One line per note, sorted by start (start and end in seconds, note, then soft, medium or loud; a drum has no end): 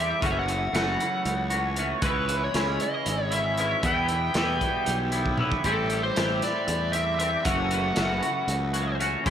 0.00 0.12 E2 medium
0.00 0.22 E3 medium
0.00 0.21 G3 medium
0.00 0.21 C4 medium
0.00 2.00 E4 medium
0.00 0.22 G4 medium
0.00 2.00 A4 medium
0.00 0.20 C5 medium
0.00 0.25 E5 medium
0.21 0.67 F#1 medium
0.21 0.71 F#2 medium
0.21 0.72 C#3 medium
0.21 0.49 E3 medium
0.21 2.02 F#3 medium
0.21 0.48 A3 medium
0.21 0.48 C#4 medium
0.21 0.46 F#4 medium
0.21 3.81 C#5 medium
0.21 kick loud
0.21 closed hi-hat medium
0.25 0.31 F#5 medium
0.30 0.37 E5 medium
0.39 1.75 F#5 medium
0.47 0.73 E3 medium
0.47 0.73 A3 medium
0.47 0.74 C#4 medium
0.47 0.74 F#4 medium
0.47 closed hi-hat medium
0.72 0.96 F#1 medium
0.72 1.77 F#2 medium
0.72 1.77 C#3 medium
0.72 1.52 E3 medium
0.72 1.51 A3 medium
0.72 1.50 C#4 medium
0.72 1.49 F#4 medium
0.72 snare loud
0.72 closed hi-hat medium
1.00 closed hi-hat medium
1.25 1.93 C#2 medium
1.25 closed hi-hat medium
1.50 1.77 E3 medium
1.50 1.77 A3 medium
1.50 1.78 C#4 medium
1.50 1.79 F#4 medium
1.50 closed hi-hat medium
1.76 2.02 E3 medium
1.76 2.02 A3 medium
1.76 2.03 C#4 medium
1.76 2.03 F#4 medium
1.76 closed hi-hat medium
2.02 2.47 C#2 loud
2.02 2.52 C#3 medium
2.02 2.54 E3 medium
2.02 5.63 E3 medium
2.02 2.29 G#3 medium
2.02 3.83 C#4 medium
2.02 2.27 C#4 medium
2.02 2.27 E4 medium
2.02 3.84 G#4 medium
2.02 2.43 B4 medium
2.02 kick loud
2.02 closed hi-hat medium
2.28 2.54 G#3 soft
2.28 2.54 C#4 medium
2.28 2.55 E4 medium
2.28 closed hi-hat medium
2.44 2.79 C#5 medium
2.54 2.77 C#2 medium
2.54 3.58 C#3 medium
2.54 3.57 E3 medium
2.54 3.32 G#3 medium
2.54 3.31 C#4 medium
2.54 3.30 E4 medium
2.54 snare loud
2.54 closed hi-hat medium
2.80 3.33 D#5 medium
2.80 closed hi-hat medium
3.06 3.74 G#1 medium
3.06 closed hi-hat medium
3.30 3.57 G#3 soft
3.30 3.58 C#4 medium
3.30 3.60 E4 medium
3.30 3.60 E5 medium
3.30 closed hi-hat medium
3.57 3.83 E3 medium
3.57 3.83 G#3 medium
3.57 3.83 C#4 medium
3.57 3.84 E4 medium
3.57 3.86 E5 medium
3.57 closed hi-hat medium
3.82 4.33 E2 medium
3.82 4.29 E2 medium
3.82 4.34 B2 medium
3.82 4.11 E3 medium
3.82 4.11 G3 medium
3.82 4.09 B3 medium
3.82 5.64 B3 medium
3.82 4.09 E4 loud
3.82 5.64 G4 medium
3.82 9.22 E5 medium
3.82 5.36 G5 loud
3.82 kick loud
3.82 closed hi-hat medium
4.08 4.36 E3 soft
4.08 4.36 G3 soft
4.08 4.36 B3 medium
4.08 4.37 E4 medium
4.08 closed hi-hat medium
4.34 5.39 E2 medium
4.34 4.58 E2 medium
4.34 5.39 B2 medium
4.34 5.14 E3 medium
4.34 5.13 G3 medium
4.34 5.12 B3 medium
4.34 5.12 E4 medium
4.34 snare loud
4.34 closed hi-hat medium
4.61 kick medium
4.61 closed hi-hat medium
4.86 5.55 B1 medium
4.86 closed hi-hat medium
5.12 5.37 E3 medium
5.12 5.37 G3 medium
5.12 5.38 B3 medium
5.12 5.40 E4 medium
5.12 closed hi-hat medium
5.26 kick medium
5.37 5.64 E3 medium
5.37 5.63 G3 medium
5.37 5.64 B3 medium
5.37 5.65 E4 medium
5.37 mid tom medium
5.52 kick medium
5.63 6.10 A1 medium
5.63 6.14 A2 medium
5.63 6.16 E3 medium
5.63 5.91 G3 medium
5.63 5.90 C4 loud
5.63 5.89 G4 loud
5.63 6.03 A4 medium
5.63 9.24 A4 medium
5.63 kick medium
5.63 closed hi-hat medium
5.67 7.45 G3 medium
5.67 7.46 C4 medium
5.90 6.16 G3 soft
5.90 6.16 C4 medium
5.90 6.17 G4 medium
5.90 closed hi-hat medium
6.03 6.40 C5 medium
6.15 6.40 A1 medium
6.15 7.19 A2 medium
6.15 7.18 E3 medium
6.15 6.94 G3 medium
6.15 6.92 C4 medium
6.15 6.91 G4 medium
6.15 snare loud
6.15 closed hi-hat medium
6.42 6.93 D5 medium
6.42 snare soft
6.42 closed hi-hat medium
6.68 7.35 E2 medium
6.68 closed hi-hat medium
6.92 7.18 G3 medium
6.92 7.19 C4 medium
6.92 7.20 G4 medium
6.92 7.18 E5 medium
6.92 closed hi-hat medium
7.18 7.45 E3 medium
7.18 7.44 G3 medium
7.18 7.44 C4 medium
7.18 7.45 G4 medium
7.18 7.44 E5 medium
7.18 closed hi-hat medium
7.44 7.90 F#1 medium
7.44 7.94 F#2 medium
7.44 7.94 C#3 medium
7.44 7.72 E3 medium
7.44 9.25 F#3 medium
7.44 7.70 A3 medium
7.44 9.30 C#4 medium
7.44 7.70 C#4 medium
7.44 7.69 F#4 medium
7.44 8.96 F#5 medium
7.44 kick loud
7.44 closed hi-hat medium
7.70 7.96 E3 medium
7.70 7.96 A3 medium
7.70 7.97 C#4 medium
7.70 7.97 F#4 medium
7.70 closed hi-hat medium
7.95 8.20 F#1 medium
7.95 8.99 F#2 medium
7.95 9.00 C#3 medium
7.95 8.76 E3 medium
7.95 8.74 A3 medium
7.95 8.73 C#4 medium
7.95 8.72 F#4 medium
7.95 snare loud
7.95 closed hi-hat medium
8.23 closed hi-hat medium
8.47 9.15 C#2 medium
8.47 closed hi-hat medium
8.73 8.98 E3 medium
8.73 8.98 A3 medium
8.73 8.99 C#4 medium
8.73 9.00 F#4 medium
8.73 closed hi-hat medium
8.99 9.25 E3 medium
8.99 9.24 A3 medium
8.99 9.25 C#4 medium
8.99 9.25 F#4 medium
8.99 closed hi-hat medium
9.24 9.30 C#2 medium
9.24 9.30 C#3 medium
9.24 9.30 E3 medium
9.24 9.30 G#3 medium
9.24 9.30 C#4 medium
9.24 9.30 E4 medium
9.24 9.30 G#4 medium
9.24 9.30 E5 medium
9.24 kick loud
9.24 closed hi-hat medium